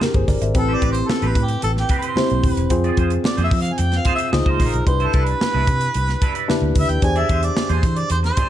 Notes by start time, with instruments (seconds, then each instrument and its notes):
Already playing: tine electric piano C4 D4 E4 G4 G#4
0.01 tine electric piano G4 A#4, muted clean electric guitar stroke, snare, high conga
0.14 fingered electric bass G1, tine electric piano G#4 C5, muted clean electric guitar stroke, kick, closed hi-hat
0.28 fingered electric bass G1, tine electric piano A#4 D5, kick, snare, open hi-hat, high conga
0.42 fingered electric bass G#1, tine electric piano C5 E5, muted clean electric guitar stroke, closed hi-hat
0.55 fingered electric bass A1, tine electric piano C4 E4 G4 B4, harmonica A4, muted clean electric guitar stroke, kick, closed hi-hat
0.68 clean electric guitar C4 G4 C5
0.75 harmonica D5
0.81 fingered electric bass A1, clean electric guitar C4 G4 B4, kick, closed hi-hat, muted conga
0.92 harmonica C5, muted clean electric guitar stroke, closed hi-hat
1.08 harmonica A4, muted clean electric guitar stroke, snare, high conga
1.22 fingered electric bass A1, clean electric guitar C4 G4 B4, closed hi-hat
1.27 harmonica B4
1.35 fingered electric bass A2, muted clean electric guitar stroke, kick, closed hi-hat, low conga
1.45 harmonica G4, closed hi-hat
1.49 muted clean electric guitar stroke
1.62 fingered electric bass A1, harmonica A4, muted clean electric guitar stroke, closed hi-hat, muted conga
1.76 harmonica G4, muted clean electric guitar stroke, snare
1.89 clean electric guitar C4 G4 B4, kick, closed hi-hat, muted conga
1.98 harmonica C5
2.02 clean electric guitar C4 G4 B4, closed hi-hat
2.16 tine electric piano C4 E4 G4 C5, muted clean electric guitar stroke, snare, high conga
2.30 fingered electric bass B1, muted clean electric guitar stroke, closed hi-hat
2.43 fingered electric bass D#1, kick, open hi-hat, high conga
2.51 harmonica B4
2.57 fingered electric bass E1, muted clean electric guitar stroke, closed hi-hat
2.70 fingered electric bass F2, tine electric piano C4 F4 G#4 C5, muted clean electric guitar stroke, kick, closed hi-hat
2.84 clean electric guitar F4 G#4 D5, closed hi-hat
2.97 fingered electric bass F2, clean electric guitar F4 G#4 C5, kick, closed hi-hat, muted conga
3.10 muted clean electric guitar stroke, closed hi-hat
3.24 harmonica D5, muted clean electric guitar stroke, snare, high conga
3.37 fingered electric bass F2, clean electric guitar F4 G#4 C5, closed hi-hat
3.44 harmonica E5
3.51 fingered electric bass F3, muted clean electric guitar stroke, kick, open hi-hat, low conga
3.61 harmonica F5, muted clean electric guitar stroke, closed hi-hat
3.73 harmonica G#5
3.78 fingered electric bass F2, harmonica G5, muted clean electric guitar stroke, closed hi-hat, muted conga
3.92 muted clean electric guitar stroke, snare, closed hi-hat
3.98 harmonica F5
4.05 clean electric guitar F4 G#4 C5, kick, closed hi-hat, muted conga, low conga
4.15 harmonica E5, closed hi-hat
4.20 clean electric guitar F4 G#4 C5
4.32 fingered electric bass C#2, tine electric piano D#4 F4 G#4 C5, harmonica D#5, muted clean electric guitar stroke, snare, high conga
4.46 fingered electric bass C#2, clean electric guitar D#4 F4 C5, kick
4.50 harmonica C5
4.60 fingered electric bass A#1, clean electric guitar D#4 F4 C5, kick, snare, open hi-hat, high conga
4.68 harmonica A#4
4.73 fingered electric bass B1, muted clean electric guitar stroke, closed hi-hat, high conga
4.87 fingered electric bass C2, tine electric piano D4 E4 G4 B4, harmonica C5, muted clean electric guitar stroke, kick, closed hi-hat
5.00 clean electric guitar D4 E4 C5, closed hi-hat
5.06 harmonica A4
5.13 fingered electric bass C2, clean electric guitar D4 E4 B4, kick, closed hi-hat, muted conga
5.25 harmonica B4, muted clean electric guitar stroke, closed hi-hat
5.41 muted clean electric guitar stroke, snare, high conga
5.53 fingered electric bass C2, clean electric guitar D4 E4 B4
5.67 fingered electric bass C3, muted clean electric guitar stroke, kick, closed hi-hat, low conga
5.80 muted clean electric guitar stroke, closed hi-hat
5.94 fingered electric bass C2, muted clean electric guitar stroke, closed hi-hat, muted conga
6.08 muted clean electric guitar stroke, snare, closed hi-hat
6.22 clean electric guitar D4 E4 B4, kick, closed hi-hat, muted conga
6.35 clean electric guitar D4 E4 B4, closed hi-hat
6.48 tine electric piano D4 E4 G4 B4, muted clean electric guitar stroke, snare, high conga
6.62 fingered electric bass D2, muted clean electric guitar stroke
6.75 fingered electric bass D2, harmonica E5, kick, open hi-hat, high conga
6.89 fingered electric bass D#2, harmonica G5, muted clean electric guitar stroke, closed hi-hat
7.02 fingered electric bass E2, tine electric piano D4 G4 G#4 C5, harmonica G#5, muted clean electric guitar stroke, kick, closed hi-hat
7.16 clean electric guitar D4 G#4 D5, harmonica E5, closed hi-hat
7.29 fingered electric bass E2, clean electric guitar D4 G#4 C5, kick, closed hi-hat, muted conga
7.42 harmonica D5, muted clean electric guitar stroke, closed hi-hat
7.56 muted clean electric guitar stroke, snare, high conga
7.69 fingered electric bass E2, clean electric guitar D4 G#4 C5, harmonica C5, closed hi-hat
7.83 fingered electric bass E3, muted clean electric guitar stroke, kick, closed hi-hat, low conga
7.96 harmonica D5, muted clean electric guitar stroke, closed hi-hat
8.10 fingered electric bass E2, harmonica C5, muted clean electric guitar stroke, closed hi-hat, muted conga
8.23 harmonica C5, muted clean electric guitar stroke, snare, closed hi-hat
8.37 clean electric guitar D4 G#4 C5, kick, closed hi-hat, muted conga, low conga